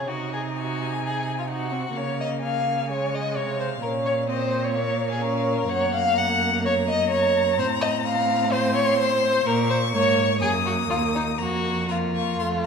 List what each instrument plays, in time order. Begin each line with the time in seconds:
Already playing: violin G#4
0.07 cello C3, viola D#4, violin F#4 D#5
0.33 violin G#4
0.56 violin F#4 G#5
0.93 violin G#4
1.03 violin G#4
1.39 violin F4
1.49 viola D#4, violin F#4 F#5
1.72 viola C4
1.95 cello C#3, viola A#3, violin C#5 F5
2.20 violin D#5
2.43 violin F5 G#5
2.90 viola G#3, violin C#5
3.15 violin D#5
3.36 cello C3, violin C#5 F5
3.60 violin C5
3.82 cello A#2, viola C#4, violin A#4
4.06 violin C#5
4.29 viola C4, violin C5 D#5
4.64 violin C#5
4.74 viola A#3, violin C#5 F5
5.11 violin G#4
5.22 viola C#4, violin A#4
5.69 cello F#2, viola A#3, violin C#5 F#5
5.94 violin F5
6.16 violin F#5 A#5
6.64 violin C#5 A#5
6.88 violin D#5
7.10 violin C#5
7.58 cello A2, viola C4, violin C5
7.81 violin D#5
8.06 violin F5
8.52 violin C5 C6
8.75 violin C#5
8.98 violin C5
9.45 cello A#2, viola A#3, violin A#4 C#6
9.70 violin C5
9.93 cello G#2, viola A#3, violin C#5
10.40 cello F#2, viola A#3, violin G#4 D#6
10.66 violin F#4
10.89 cello D#2, violin F4
11.15 violin D#4
11.38 cello F2, viola A#3, violin F#4 A#5
11.88 viola A#3, violin F4 A#5
12.16 violin C#6
12.39 cello F2, viola A3, violin C6